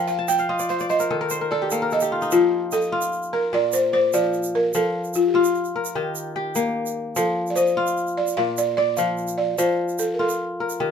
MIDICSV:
0, 0, Header, 1, 4, 480
1, 0, Start_track
1, 0, Tempo, 404040
1, 2748, Time_signature, 12, 3, 24, 8
1, 12961, End_track
2, 0, Start_track
2, 0, Title_t, "Balafon"
2, 0, Program_c, 0, 12
2, 90, Note_on_c, 0, 77, 97
2, 201, Note_off_c, 0, 77, 0
2, 334, Note_on_c, 0, 79, 100
2, 562, Note_off_c, 0, 79, 0
2, 822, Note_on_c, 0, 77, 82
2, 1064, Note_on_c, 0, 75, 78
2, 1071, Note_off_c, 0, 77, 0
2, 1792, Note_on_c, 0, 74, 76
2, 1808, Note_off_c, 0, 75, 0
2, 2285, Note_off_c, 0, 74, 0
2, 2291, Note_on_c, 0, 75, 80
2, 2727, Note_off_c, 0, 75, 0
2, 2758, Note_on_c, 0, 65, 98
2, 3243, Note_on_c, 0, 69, 98
2, 3248, Note_off_c, 0, 65, 0
2, 3956, Note_on_c, 0, 70, 85
2, 3979, Note_off_c, 0, 69, 0
2, 4200, Note_off_c, 0, 70, 0
2, 4207, Note_on_c, 0, 74, 109
2, 4423, Note_off_c, 0, 74, 0
2, 4436, Note_on_c, 0, 72, 96
2, 4661, Note_off_c, 0, 72, 0
2, 4675, Note_on_c, 0, 72, 100
2, 4897, Note_off_c, 0, 72, 0
2, 4918, Note_on_c, 0, 74, 95
2, 5407, Note_on_c, 0, 70, 94
2, 5409, Note_off_c, 0, 74, 0
2, 5623, Note_off_c, 0, 70, 0
2, 5647, Note_on_c, 0, 69, 96
2, 6086, Note_off_c, 0, 69, 0
2, 6125, Note_on_c, 0, 65, 87
2, 6193, Note_off_c, 0, 65, 0
2, 6265, Note_on_c, 0, 67, 54
2, 6342, Note_on_c, 0, 65, 82
2, 6350, Note_off_c, 0, 67, 0
2, 7020, Note_off_c, 0, 65, 0
2, 8525, Note_on_c, 0, 69, 88
2, 8912, Note_on_c, 0, 74, 66
2, 8927, Note_off_c, 0, 69, 0
2, 8977, Note_on_c, 0, 72, 103
2, 8994, Note_off_c, 0, 74, 0
2, 9710, Note_on_c, 0, 74, 89
2, 9726, Note_off_c, 0, 72, 0
2, 9944, Note_on_c, 0, 77, 114
2, 9958, Note_off_c, 0, 74, 0
2, 10194, Note_off_c, 0, 77, 0
2, 10194, Note_on_c, 0, 74, 95
2, 10406, Note_off_c, 0, 74, 0
2, 10420, Note_on_c, 0, 74, 103
2, 10655, Note_on_c, 0, 77, 95
2, 10673, Note_off_c, 0, 74, 0
2, 11139, Note_on_c, 0, 74, 88
2, 11157, Note_off_c, 0, 77, 0
2, 11384, Note_on_c, 0, 72, 85
2, 11391, Note_off_c, 0, 74, 0
2, 11871, Note_on_c, 0, 69, 81
2, 11880, Note_off_c, 0, 72, 0
2, 12016, Note_off_c, 0, 69, 0
2, 12044, Note_on_c, 0, 70, 57
2, 12117, Note_on_c, 0, 69, 75
2, 12118, Note_off_c, 0, 70, 0
2, 12784, Note_off_c, 0, 69, 0
2, 12961, End_track
3, 0, Start_track
3, 0, Title_t, "Kora"
3, 0, Program_c, 1, 46
3, 0, Note_on_c, 1, 53, 84
3, 0, Note_on_c, 1, 70, 70
3, 0, Note_on_c, 1, 74, 72
3, 219, Note_off_c, 1, 74, 0
3, 221, Note_on_c, 1, 81, 72
3, 293, Note_off_c, 1, 70, 0
3, 347, Note_on_c, 1, 79, 65
3, 465, Note_on_c, 1, 77, 68
3, 584, Note_on_c, 1, 65, 76
3, 586, Note_on_c, 1, 75, 67
3, 708, Note_on_c, 1, 74, 69
3, 830, Note_on_c, 1, 72, 62
3, 953, Note_off_c, 1, 74, 0
3, 958, Note_on_c, 1, 74, 81
3, 1029, Note_off_c, 1, 75, 0
3, 1063, Note_off_c, 1, 72, 0
3, 1068, Note_on_c, 1, 72, 73
3, 1185, Note_on_c, 1, 70, 67
3, 1256, Note_off_c, 1, 81, 0
3, 1312, Note_on_c, 1, 51, 72
3, 1313, Note_on_c, 1, 69, 66
3, 1365, Note_off_c, 1, 53, 0
3, 1383, Note_off_c, 1, 74, 0
3, 1431, Note_off_c, 1, 70, 0
3, 1436, Note_on_c, 1, 70, 77
3, 1454, Note_off_c, 1, 79, 0
3, 1549, Note_off_c, 1, 72, 0
3, 1554, Note_on_c, 1, 72, 74
3, 1651, Note_off_c, 1, 77, 0
3, 1672, Note_off_c, 1, 70, 0
3, 1676, Note_on_c, 1, 70, 63
3, 1748, Note_off_c, 1, 69, 0
3, 1801, Note_on_c, 1, 69, 80
3, 1923, Note_on_c, 1, 67, 66
3, 2037, Note_off_c, 1, 69, 0
3, 2038, Note_on_c, 1, 58, 71
3, 2042, Note_on_c, 1, 69, 68
3, 2113, Note_off_c, 1, 70, 0
3, 2161, Note_on_c, 1, 70, 69
3, 2279, Note_off_c, 1, 69, 0
3, 2284, Note_on_c, 1, 69, 63
3, 2382, Note_off_c, 1, 65, 0
3, 2395, Note_off_c, 1, 67, 0
3, 2400, Note_on_c, 1, 67, 71
3, 2518, Note_on_c, 1, 65, 67
3, 2637, Note_on_c, 1, 63, 70
3, 2757, Note_on_c, 1, 53, 79
3, 2808, Note_off_c, 1, 51, 0
3, 2964, Note_off_c, 1, 72, 0
3, 3236, Note_on_c, 1, 75, 72
3, 3468, Note_off_c, 1, 65, 0
3, 3473, Note_on_c, 1, 65, 79
3, 3674, Note_off_c, 1, 70, 0
3, 3849, Note_off_c, 1, 69, 0
3, 3956, Note_on_c, 1, 70, 68
3, 4077, Note_off_c, 1, 67, 0
3, 4191, Note_on_c, 1, 46, 68
3, 4193, Note_on_c, 1, 74, 63
3, 4250, Note_off_c, 1, 53, 0
3, 4265, Note_off_c, 1, 63, 0
3, 4265, Note_off_c, 1, 75, 0
3, 4330, Note_off_c, 1, 58, 0
3, 4665, Note_off_c, 1, 74, 0
3, 4670, Note_on_c, 1, 74, 70
3, 4914, Note_on_c, 1, 53, 78
3, 5271, Note_off_c, 1, 65, 0
3, 5468, Note_off_c, 1, 70, 0
3, 5625, Note_off_c, 1, 53, 0
3, 5640, Note_on_c, 1, 53, 82
3, 5691, Note_off_c, 1, 46, 0
3, 5986, Note_off_c, 1, 74, 0
3, 6353, Note_on_c, 1, 65, 85
3, 6838, Note_on_c, 1, 70, 69
3, 7074, Note_on_c, 1, 51, 75
3, 7076, Note_on_c, 1, 67, 62
3, 7132, Note_off_c, 1, 53, 0
3, 7548, Note_off_c, 1, 67, 0
3, 7553, Note_on_c, 1, 67, 77
3, 7788, Note_on_c, 1, 58, 82
3, 8151, Note_off_c, 1, 65, 0
3, 8350, Note_off_c, 1, 70, 0
3, 8509, Note_on_c, 1, 53, 92
3, 8572, Note_off_c, 1, 51, 0
3, 8993, Note_on_c, 1, 75, 73
3, 9231, Note_off_c, 1, 67, 0
3, 9231, Note_on_c, 1, 65, 87
3, 9949, Note_on_c, 1, 46, 79
3, 9953, Note_on_c, 1, 74, 68
3, 10011, Note_off_c, 1, 53, 0
3, 10024, Note_off_c, 1, 75, 0
3, 10080, Note_off_c, 1, 58, 0
3, 10425, Note_off_c, 1, 74, 0
3, 10430, Note_on_c, 1, 74, 77
3, 10672, Note_on_c, 1, 53, 85
3, 11029, Note_off_c, 1, 65, 0
3, 11371, Note_off_c, 1, 53, 0
3, 11386, Note_on_c, 1, 53, 90
3, 11449, Note_off_c, 1, 46, 0
3, 11746, Note_off_c, 1, 74, 0
3, 12109, Note_on_c, 1, 65, 80
3, 12596, Note_on_c, 1, 70, 65
3, 12832, Note_on_c, 1, 51, 72
3, 12833, Note_on_c, 1, 67, 67
3, 12886, Note_off_c, 1, 53, 0
3, 12961, Note_off_c, 1, 51, 0
3, 12961, Note_off_c, 1, 65, 0
3, 12961, Note_off_c, 1, 67, 0
3, 12961, Note_off_c, 1, 70, 0
3, 12961, End_track
4, 0, Start_track
4, 0, Title_t, "Drums"
4, 91, Note_on_c, 9, 82, 18
4, 210, Note_off_c, 9, 82, 0
4, 337, Note_on_c, 9, 82, 58
4, 451, Note_off_c, 9, 82, 0
4, 451, Note_on_c, 9, 82, 18
4, 570, Note_off_c, 9, 82, 0
4, 703, Note_on_c, 9, 82, 48
4, 822, Note_off_c, 9, 82, 0
4, 822, Note_on_c, 9, 82, 19
4, 940, Note_off_c, 9, 82, 0
4, 943, Note_on_c, 9, 82, 21
4, 1062, Note_off_c, 9, 82, 0
4, 1066, Note_on_c, 9, 82, 20
4, 1184, Note_off_c, 9, 82, 0
4, 1184, Note_on_c, 9, 82, 51
4, 1303, Note_off_c, 9, 82, 0
4, 1543, Note_on_c, 9, 82, 55
4, 1662, Note_off_c, 9, 82, 0
4, 2028, Note_on_c, 9, 82, 54
4, 2146, Note_off_c, 9, 82, 0
4, 2266, Note_on_c, 9, 82, 19
4, 2381, Note_off_c, 9, 82, 0
4, 2381, Note_on_c, 9, 82, 54
4, 2500, Note_off_c, 9, 82, 0
4, 2633, Note_on_c, 9, 82, 20
4, 2748, Note_off_c, 9, 82, 0
4, 2748, Note_on_c, 9, 82, 61
4, 2866, Note_off_c, 9, 82, 0
4, 3226, Note_on_c, 9, 82, 55
4, 3342, Note_off_c, 9, 82, 0
4, 3342, Note_on_c, 9, 82, 21
4, 3461, Note_off_c, 9, 82, 0
4, 3581, Note_on_c, 9, 82, 51
4, 3700, Note_off_c, 9, 82, 0
4, 3711, Note_on_c, 9, 82, 19
4, 3830, Note_off_c, 9, 82, 0
4, 3830, Note_on_c, 9, 82, 20
4, 3949, Note_off_c, 9, 82, 0
4, 4423, Note_on_c, 9, 82, 64
4, 4542, Note_off_c, 9, 82, 0
4, 4907, Note_on_c, 9, 82, 51
4, 5026, Note_off_c, 9, 82, 0
4, 5147, Note_on_c, 9, 82, 18
4, 5264, Note_off_c, 9, 82, 0
4, 5264, Note_on_c, 9, 82, 50
4, 5383, Note_off_c, 9, 82, 0
4, 5625, Note_on_c, 9, 82, 56
4, 5744, Note_off_c, 9, 82, 0
4, 5988, Note_on_c, 9, 82, 18
4, 6101, Note_off_c, 9, 82, 0
4, 6101, Note_on_c, 9, 82, 54
4, 6220, Note_off_c, 9, 82, 0
4, 6467, Note_on_c, 9, 82, 50
4, 6586, Note_off_c, 9, 82, 0
4, 6590, Note_on_c, 9, 82, 16
4, 6709, Note_off_c, 9, 82, 0
4, 6709, Note_on_c, 9, 82, 20
4, 6827, Note_off_c, 9, 82, 0
4, 6950, Note_on_c, 9, 82, 56
4, 7069, Note_off_c, 9, 82, 0
4, 7309, Note_on_c, 9, 82, 57
4, 7428, Note_off_c, 9, 82, 0
4, 7785, Note_on_c, 9, 82, 56
4, 7904, Note_off_c, 9, 82, 0
4, 8151, Note_on_c, 9, 82, 45
4, 8270, Note_off_c, 9, 82, 0
4, 8506, Note_on_c, 9, 82, 63
4, 8625, Note_off_c, 9, 82, 0
4, 8871, Note_on_c, 9, 82, 20
4, 8986, Note_off_c, 9, 82, 0
4, 8986, Note_on_c, 9, 82, 57
4, 9105, Note_off_c, 9, 82, 0
4, 9111, Note_on_c, 9, 82, 19
4, 9229, Note_off_c, 9, 82, 0
4, 9348, Note_on_c, 9, 82, 48
4, 9467, Note_off_c, 9, 82, 0
4, 9468, Note_on_c, 9, 82, 19
4, 9587, Note_off_c, 9, 82, 0
4, 9587, Note_on_c, 9, 82, 21
4, 9706, Note_off_c, 9, 82, 0
4, 9825, Note_on_c, 9, 82, 49
4, 9944, Note_off_c, 9, 82, 0
4, 10186, Note_on_c, 9, 82, 59
4, 10305, Note_off_c, 9, 82, 0
4, 10657, Note_on_c, 9, 82, 54
4, 10775, Note_off_c, 9, 82, 0
4, 10900, Note_on_c, 9, 82, 17
4, 11018, Note_off_c, 9, 82, 0
4, 11020, Note_on_c, 9, 82, 47
4, 11138, Note_off_c, 9, 82, 0
4, 11386, Note_on_c, 9, 82, 52
4, 11505, Note_off_c, 9, 82, 0
4, 11741, Note_on_c, 9, 82, 19
4, 11860, Note_off_c, 9, 82, 0
4, 11863, Note_on_c, 9, 82, 57
4, 11982, Note_off_c, 9, 82, 0
4, 12226, Note_on_c, 9, 82, 47
4, 12345, Note_off_c, 9, 82, 0
4, 12705, Note_on_c, 9, 82, 55
4, 12823, Note_off_c, 9, 82, 0
4, 12961, End_track
0, 0, End_of_file